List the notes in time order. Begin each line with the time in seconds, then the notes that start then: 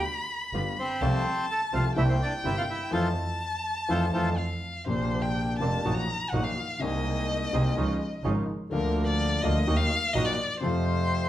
Already playing: B5
0.53 G1 G2 D3 G3 B3 F4
0.79 C4 C5
1.01 C2 C3 F3 A3 C4 F4 A5
1.51 A4 A5
1.72 C2 C3 F3 A3 C4 F4 F5
1.96 C2 C3 G3 A#3 C4 E4 E5 G5
2.09 C4 C5
2.22 D4 D5
2.43 G1 G2 C3 G3 A#3 C4 E4 E5
2.57 F4 F5
2.70 E4 E5
2.91 F2 E3 F3 A3 C4 F4 A4 C5 A5
3.89 F2 E3 F3 A3 C4 F4 A4 C5
4.13 F2 E3 F3 A3 C4 F4 A4 C5
4.38 F5
4.86 A#1 A#2 C3 F3 A#3 C4 D4 C5
5.22 G5
5.59 F1 F2 C3 F3 A#3 C4 D4 A5
5.84 A#1 A#2 D#3 F#3 A#3 D#4 F#4
5.95 A#5
6.29 A#1 A#2 D#3 F#3 A#3 D#4 F#4 F#5
6.34 F#4
6.43 F5
6.79 C2 C3 G#3 A#3 C4 G#4 D#5
6.83 D#4
7.52 C2 C3 G#3 A#3 C4 D#4 G#4
7.76 C#2 C#3 F3 G#3 C#4 D#4 F4
8.24 G#1 G#2 C#3 F3 G#3 C#4 D#4 F4
8.70 D2 D3 F3 A#3 D4 F4 A#4
9.07 D5
9.43 D2 D3 F3 A#3 D4 F4 D#5
9.67 D#2 D#3 F#3 A#3 D#4 F#4
9.77 F5
10.13 A#1 A#2 D#3 F#3 A#3 D#4 F#4 D#5
10.25 D5
10.60 F2 C3 F3 A3 C4 F4 C5
10.65 F4